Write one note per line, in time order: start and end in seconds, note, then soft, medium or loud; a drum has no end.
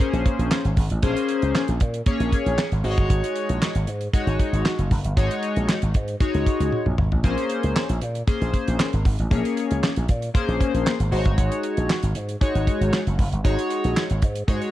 0.00 0.58 A#3 medium
0.00 0.58 C#4 medium
0.00 0.58 G#4 medium
0.00 0.58 C5 medium
0.00 kick loud
0.00 closed hi-hat medium
0.13 0.23 A#1 medium
0.13 closed hi-hat soft
0.26 kick medium
0.26 closed hi-hat medium
0.39 0.48 A#1 medium
0.39 closed hi-hat medium
0.51 snare loud
0.51 clap medium
0.65 0.74 G#1 loud
0.65 closed hi-hat soft
0.77 0.88 G#1 medium
0.77 kick medium
0.77 open hi-hat medium
0.90 1.00 A1 medium
0.90 closed hi-hat medium
1.03 1.14 A#1 loud
1.03 1.61 A#3 medium
1.03 1.61 C#4 medium
1.03 1.61 G#4 medium
1.03 1.61 C5 loud
1.03 kick loud
1.03 closed hi-hat medium
1.17 closed hi-hat medium
1.29 closed hi-hat medium
1.42 1.52 C#2 medium
1.42 closed hi-hat soft
1.55 snare loud
1.55 clap medium
1.68 1.78 A#1 loud
1.68 closed hi-hat soft
1.80 2.00 A#2 loud
1.80 kick loud
1.80 closed hi-hat medium
1.94 closed hi-hat medium
2.06 2.64 A#3 medium
2.06 2.65 C#4 medium
2.06 2.65 G#4 medium
2.06 2.65 C#5 medium
2.06 kick loud
2.06 closed hi-hat medium
2.20 2.29 A#1 medium
2.20 closed hi-hat medium
2.32 kick medium
2.32 closed hi-hat medium
2.46 2.55 A#1 medium
2.46 closed hi-hat soft
2.58 snare loud
2.58 clap medium
2.72 2.81 G#1 medium
2.72 closed hi-hat soft
2.84 2.94 G#1 medium
2.84 3.67 G#3 medium
2.84 3.67 D#4 medium
2.84 3.67 F#4 medium
2.84 2.91 C5 medium
2.84 open hi-hat medium
2.91 3.71 C#5 loud
2.98 3.07 G1 medium
2.98 kick loud
2.98 closed hi-hat medium
3.10 3.20 G#1 loud
3.10 kick loud
3.10 closed hi-hat medium
3.24 closed hi-hat medium
3.36 closed hi-hat medium
3.49 3.59 A#1 medium
3.49 closed hi-hat medium
3.62 snare loud
3.62 clap medium
3.75 3.85 G#1 loud
3.75 closed hi-hat medium
3.87 4.07 G#2 loud
3.87 closed hi-hat medium
4.01 closed hi-hat soft
4.13 4.71 G#3 medium
4.13 4.72 D#4 medium
4.13 4.72 F#4 medium
4.13 4.72 C#5 medium
4.13 kick loud
4.13 closed hi-hat medium
4.27 4.36 G#1 medium
4.27 closed hi-hat soft
4.39 kick medium
4.39 closed hi-hat medium
4.53 4.62 G#1 medium
4.53 closed hi-hat medium
4.66 snare loud
4.66 clap medium
4.79 4.88 F#1 medium
4.79 closed hi-hat soft
4.91 5.01 F#1 medium
4.91 kick medium
4.91 open hi-hat medium
5.04 5.14 G1 medium
5.04 closed hi-hat medium
5.16 5.27 G#1 loud
5.16 5.75 G#3 medium
5.16 5.75 D#4 medium
5.16 5.75 F#4 medium
5.16 5.75 C#5 medium
5.16 kick loud
5.16 closed hi-hat medium
5.31 closed hi-hat medium
5.43 closed hi-hat medium
5.56 5.66 A#1 medium
5.56 closed hi-hat medium
5.69 snare loud
5.69 clap medium
5.82 5.92 G#1 loud
5.82 closed hi-hat medium
5.94 6.14 G#2 medium
5.94 kick medium
5.94 closed hi-hat medium
6.08 closed hi-hat soft
6.20 6.78 G#3 medium
6.20 6.79 D#4 medium
6.20 6.79 F#4 medium
6.20 6.79 C#5 medium
6.20 kick loud
6.20 closed hi-hat medium
6.34 6.44 C#2 medium
6.34 closed hi-hat soft
6.46 kick medium
6.46 closed hi-hat medium
6.60 6.69 C#2 medium
6.60 closed hi-hat medium
6.72 high tom medium
6.86 6.95 A#1 medium
6.86 mid tom medium
6.98 7.08 G#1 medium
6.98 mid tom medium
7.12 7.21 A1 medium
7.12 floor tom medium
7.24 7.34 A#1 loud
7.24 7.82 A#3 medium
7.24 7.31 C4 medium
7.24 7.82 G#4 medium
7.24 7.82 C5 medium
7.24 kick loud
7.24 closed hi-hat medium
7.30 7.85 C#4 medium
7.38 closed hi-hat medium
7.50 closed hi-hat medium
7.63 7.73 C#2 medium
7.63 closed hi-hat medium
7.76 snare loud
7.76 clap medium
7.89 7.99 A#1 medium
7.89 closed hi-hat medium
8.01 8.21 A#2 medium
8.01 closed hi-hat medium
8.15 closed hi-hat medium
8.27 8.85 A#3 medium
8.27 8.85 C#4 medium
8.27 8.86 G#4 medium
8.27 8.86 C5 medium
8.27 kick loud
8.27 closed hi-hat medium
8.41 8.51 A#1 medium
8.41 closed hi-hat soft
8.54 kick medium
8.54 closed hi-hat medium
8.68 8.77 A#1 medium
8.68 closed hi-hat medium
8.80 snare loud
8.80 clap medium
8.93 9.02 G#1 medium
8.93 closed hi-hat soft
9.05 9.16 G#1 medium
9.05 kick medium
9.05 open hi-hat medium
9.19 9.28 A1 medium
9.19 closed hi-hat soft
9.31 9.42 A#1 loud
9.31 9.89 A#3 medium
9.31 9.89 C#4 medium
9.31 9.89 G#4 medium
9.31 9.89 C#5 medium
9.31 kick loud
9.31 closed hi-hat medium
9.45 closed hi-hat medium
9.57 closed hi-hat medium
9.71 9.80 C#2 loud
9.71 closed hi-hat medium
9.83 snare loud
9.83 clap medium
9.96 10.06 A#1 loud
9.96 closed hi-hat medium
10.08 10.28 A#2 medium
10.08 kick loud
10.08 closed hi-hat medium
10.22 closed hi-hat medium
10.34 10.92 A#3 medium
10.34 10.92 C#4 medium
10.34 10.92 G#4 medium
10.34 10.93 C5 medium
10.34 kick loud
10.34 closed hi-hat medium
10.48 10.57 A#1 loud
10.48 closed hi-hat soft
10.61 kick medium
10.61 closed hi-hat medium
10.74 10.83 A#1 medium
10.74 closed hi-hat medium
10.87 snare medium
10.87 clap medium
11.00 11.09 G#1 medium
11.00 closed hi-hat soft
11.11 11.22 G#1 medium
11.11 11.95 G#3 medium
11.11 11.95 D#4 medium
11.11 11.95 F#4 medium
11.11 11.19 C5 medium
11.11 open hi-hat medium
11.18 11.98 C#5 medium
11.25 11.35 G1 medium
11.25 kick medium
11.25 closed hi-hat medium
11.38 11.48 G#1 loud
11.38 kick loud
11.38 closed hi-hat medium
11.52 closed hi-hat medium
11.63 closed hi-hat medium
11.77 11.87 A#1 medium
11.77 closed hi-hat medium
11.90 snare loud
11.90 clap medium
12.03 12.12 G#1 loud
12.03 closed hi-hat medium
12.15 12.35 G#2 medium
12.15 closed hi-hat medium
12.29 closed hi-hat soft
12.41 12.99 G#3 medium
12.41 12.99 D#4 medium
12.41 12.99 F#4 medium
12.41 12.99 C#5 medium
12.41 kick loud
12.41 closed hi-hat medium
12.55 12.64 G#1 medium
12.55 closed hi-hat soft
12.67 kick medium
12.67 closed hi-hat medium
12.81 12.90 G#1 medium
12.81 closed hi-hat medium
12.93 snare loud
12.93 clap medium
13.07 13.16 F#1 medium
13.07 closed hi-hat soft
13.19 13.29 F#1 medium
13.19 kick medium
13.19 open hi-hat medium
13.33 13.42 G1 medium
13.33 closed hi-hat medium
13.44 13.55 G#1 medium
13.44 14.02 G#3 medium
13.44 14.02 D#4 medium
13.44 14.03 F#4 medium
13.44 14.03 C#5 loud
13.44 kick medium
13.44 closed hi-hat loud
13.59 closed hi-hat medium
13.70 closed hi-hat medium
13.84 13.94 A#1 medium
13.84 closed hi-hat medium
13.97 snare loud
13.97 clap medium
14.10 14.20 G#1 medium
14.10 closed hi-hat medium
14.22 14.42 G#2 medium
14.22 kick loud
14.22 closed hi-hat medium
14.35 closed hi-hat medium
14.48 14.58 G#2 medium
14.48 14.71 G#3 medium
14.48 14.71 D#4 medium
14.48 14.71 F#4 medium
14.48 14.71 C#5 medium
14.48 kick loud
14.48 closed hi-hat medium
14.62 closed hi-hat soft